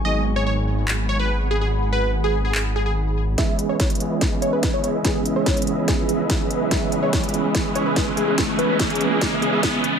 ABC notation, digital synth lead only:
X:1
M:4/4
L:1/16
Q:1/4=144
K:C#m
V:1 name="Digital synth lead"
d2 z c c z4 z c B2 z G G | z2 B2 z G2 G2 z G G z4 | e2 z c c z4 z c B2 c c z | G G z c4- c G4 z4 |
e2 z c c z4 z c B2 z G G | z2 B2 z G2 G2 z G G z4 |]